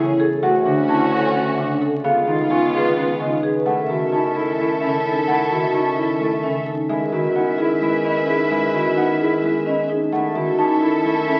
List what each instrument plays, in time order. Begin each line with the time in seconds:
Already playing: bass clarinet A2, harp C#3 E3 A3 B3, string section C#4 G#4, vibraphone E4, clarinet G#4, marimba C#5
0.20 marimba G#4, vibraphone A4
0.42 bass clarinet D2, harp A3, string section C#4 F#4, clarinet F#4, vibraphone F#4, marimba F#5
0.65 harp D3, vibraphone D4, clarinet F#4
0.88 harp C#4, vibraphone E4, clarinet F#4, marimba A5
1.12 clarinet F#4, vibraphone A4, marimba A4
1.35 harp A3, vibraphone C#4, clarinet F#4
1.58 harp C#3, vibraphone D4, clarinet F#4, marimba E5
1.81 marimba A4, vibraphone A4
2.04 bass clarinet C#2, harp B3, string section B3 F4, clarinet F4, vibraphone G#4, marimba F5
2.27 harp D#3, vibraphone D#4, clarinet F4
2.50 harp C#4, clarinet F4, vibraphone F4, marimba G#5
2.74 clarinet F4, marimba G#4, vibraphone B4
2.96 harp B3, vibraphone C#4, clarinet F4
3.19 harp C#3, vibraphone D#4, clarinet F4, marimba D#5
3.43 marimba G#4, vibraphone B4
3.66 bass clarinet F#2, harp A3, clarinet E4, vibraphone A4, string section A4 E5, marimba F#5
3.89 harp D#3, clarinet E4, vibraphone F#4
4.12 harp C#4, vibraphone D#4, clarinet E4, marimba A5
4.35 clarinet E4, vibraphone E4, marimba A4
4.58 harp A3, clarinet E4, vibraphone A4
4.81 harp C#3, vibraphone C#4, clarinet E4, marimba E5
5.04 vibraphone D#4, clarinet E4, marimba A4
5.27 harp A3, clarinet E4, vibraphone A4, marimba F#5
5.50 harp D#3, clarinet E4, vibraphone F#4
5.74 harp C#4, vibraphone D#4, clarinet E4, marimba A5
5.97 clarinet E4, vibraphone E4, marimba A4
6.20 harp A3, clarinet E4, vibraphone A4
6.43 harp C#3, vibraphone C#4, clarinet E4, marimba E5
6.66 vibraphone D#4, marimba A4
6.89 bass clarinet F#2, harp G#3, clarinet E4, vibraphone G#4, string section B4 E5, marimba E5
7.12 harp D#3, clarinet E4, vibraphone F#4
7.35 harp B3, vibraphone D#4, clarinet E4, marimba F#5
7.58 clarinet E4, vibraphone E4, marimba G#4
7.80 harp G#3, clarinet E4, vibraphone G#4
8.04 vibraphone C#4, clarinet E4, marimba D#5
8.27 vibraphone D#4, clarinet E4, marimba G#4
8.50 harp G#3, clarinet E4, vibraphone G#4, marimba E5
8.74 harp D#3, clarinet E4, vibraphone F#4
8.96 harp B3, vibraphone D#4, clarinet E4, marimba F#5
9.20 vibraphone E4, clarinet E4, marimba G#4
9.43 harp G#3, clarinet E4, vibraphone G#4
9.66 vibraphone C#4, clarinet E4, marimba D#5
9.89 vibraphone D#4, marimba G#4
10.12 bass clarinet F#2, harp A3, clarinet E4, string section A4 E5, vibraphone A4, marimba F#5
10.35 harp D#3, clarinet E4, vibraphone F#4
10.59 harp C#4, vibraphone D#4, clarinet E4, marimba A5
10.81 clarinet E4, vibraphone E4, marimba A4
11.04 harp A3, clarinet E4, vibraphone A4
11.27 vibraphone C#4, clarinet E4, marimba E5